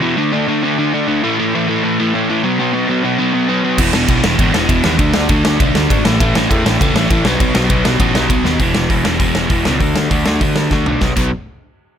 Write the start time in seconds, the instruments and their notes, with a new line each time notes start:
0.02 overdriven electric guitar E2 B2 E3
0.18 overdriven electric guitar D3 A3 D4
0.33 overdriven electric guitar D3 A3 D4
0.48 overdriven electric guitar D3 A3 D4
0.64 overdriven electric guitar D3 A3 D4
0.79 overdriven electric guitar D3 A3 D4
0.94 overdriven electric guitar D3 A3 D4
1.08 overdriven electric guitar D3 A3 D4
1.23 overdriven electric guitar A2 E3 A3
1.40 overdriven electric guitar A2 E3 A3
1.55 overdriven electric guitar A2 E3 A3
1.69 overdriven electric guitar A2 E3 A3
1.83 overdriven electric guitar A2 E3 A3
2.00 overdriven electric guitar A2 E3 A3
2.14 overdriven electric guitar A2 E3 A3
2.29 overdriven electric guitar A2 E3 A3
2.43 overdriven electric guitar B2 F#3 B3
2.59 overdriven electric guitar B2 F#3 B3
2.73 overdriven electric guitar B2 F#3 B3
2.88 overdriven electric guitar B2 F#3 B3
3.03 overdriven electric guitar B2 F#3 B3
3.18 overdriven electric guitar B2 F#3 B3
3.33 overdriven electric guitar B2 F#3 B3
3.48 overdriven electric guitar B2 F#3 B3
3.63 overdriven electric guitar B2 F#3 B3
3.78 picked electric bass E1, overdriven electric guitar E2 B2 E3, kick, crash
3.93 picked electric bass E1, overdriven electric guitar E2 B2 E3, snare
4.08 picked electric bass B1, overdriven electric guitar E2 B2 E3, kick, ride
4.23 picked electric bass E1, overdriven electric guitar E2 B2 E3, snare
4.39 picked electric bass G#1, overdriven electric guitar E2 B2 E3, kick, ride
4.54 picked electric bass E1, overdriven electric guitar E2 B2 E3, snare
4.68 picked electric bass E1, overdriven electric guitar E2 B2 E3, kick, ride
4.84 picked electric bass D#2, overdriven electric guitar E2 B2 E3, snare
4.98 picked electric bass D2, overdriven electric guitar D3 A3 D4, kick, ride
5.14 picked electric bass D2, overdriven electric guitar D3 A3 D4, snare
5.29 picked electric bass D2, overdriven electric guitar D3 A3 D4, kick, ride
5.45 picked electric bass D2, overdriven electric guitar D3 A3 D4, snare
5.60 picked electric bass B1, overdriven electric guitar D3 A3 D4, kick, ride
5.74 picked electric bass D2, overdriven electric guitar D3 A3 D4, snare
5.90 picked electric bass G#1, overdriven electric guitar D3 A3 D4, kick, ride
6.05 picked electric bass A1, overdriven electric guitar A2 E3 A3, snare
6.20 picked electric bass A1, overdriven electric guitar A2 E3 A3, kick, ride
6.35 picked electric bass A1, overdriven electric guitar A2 E3 A3, snare
6.50 picked electric bass E2, overdriven electric guitar A2 E3 A3, kick, ride
6.65 picked electric bass A1, overdriven electric guitar A2 E3 A3, snare
6.80 picked electric bass C#2, overdriven electric guitar A2 E3 A3, kick, ride
6.94 picked electric bass A1, overdriven electric guitar A2 E3 A3, snare
7.10 picked electric bass A1, overdriven electric guitar A2 E3 A3, kick, ride
7.24 picked electric bass B1, overdriven electric guitar B2 F#3 B3, snare
7.40 picked electric bass B1, overdriven electric guitar B2 F#3 B3, kick, ride
7.54 picked electric bass B1, overdriven electric guitar B2 F#3 B3, snare
7.70 picked electric bass B1, overdriven electric guitar B2 F#3 B3, kick, ride
7.85 picked electric bass B1, overdriven electric guitar B2 F#3 B3, snare
7.99 picked electric bass A1, overdriven electric guitar B2 F#3 B3, kick, ride
8.15 picked electric bass B1, overdriven electric guitar B2 F#3 B3, snare
8.29 picked electric bass B1, overdriven electric guitar B2 F#3 B3, kick, ride
8.44 picked electric bass D#2, overdriven electric guitar B2 F#3 B3, snare
8.59 picked electric bass E1, overdriven electric guitar E2 B2 E3, kick, open hi-hat
8.75 picked electric bass E1, snare
8.90 picked electric bass E1, overdriven electric guitar E2 B2 E3, kick, open hi-hat
9.05 picked electric bass E1, overdriven electric guitar E2 B2 E3, snare
9.19 picked electric bass E1, overdriven electric guitar E2 B2 E3, kick, open hi-hat
9.35 snare
9.50 picked electric bass E1, overdriven electric guitar E2 B2 E3, kick, open hi-hat
9.65 picked electric bass C#2, overdriven electric guitar E2 B2 E3, snare
9.80 picked electric bass D2, overdriven electric guitar D3 A3 D4, kick, open hi-hat
9.96 picked electric bass D2, snare
10.10 picked electric bass D2, overdriven electric guitar D3 A3 D4, kick, open hi-hat
10.26 picked electric bass D2, overdriven electric guitar D3 A3 D4, snare
10.41 picked electric bass D2, overdriven electric guitar D3 A3 D4, kick, open hi-hat
10.56 snare
10.71 picked electric bass D2, overdriven electric guitar D3 A3 D4, kick, snare
10.86 picked electric bass B1, overdriven electric guitar D3 A3 D4, floor tom
11.01 picked electric bass B1, overdriven electric guitar B2 F#3 B3, kick, snare
11.16 picked electric bass B1, overdriven electric guitar B2 F#3 B3, kick, crash